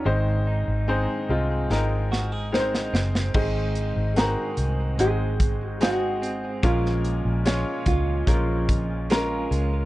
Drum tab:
CC |----------------|x---------------|----------------|
HH |----------------|--x-x-x-x-x-x-x-|x-x-x-x-x-x-x-x-|
SD |--------o-o-oooo|----o-------o---|-o--o-------o---|
BD |----------------|o---------o-----|o-----o-o-o-----|